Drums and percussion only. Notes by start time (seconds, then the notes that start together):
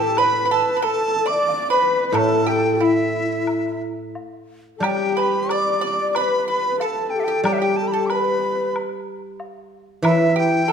0.17 high woodblock
0.83 high woodblock
1.48 low woodblock
2.15 high woodblock
2.81 low woodblock
3.47 high woodblock
4.15 low woodblock
4.83 high woodblock
5.49 high woodblock
6.15 high woodblock
6.80 low woodblock
7.45 high woodblock
8.10 high woodblock
8.76 high woodblock
9.40 low woodblock
10.05 high woodblock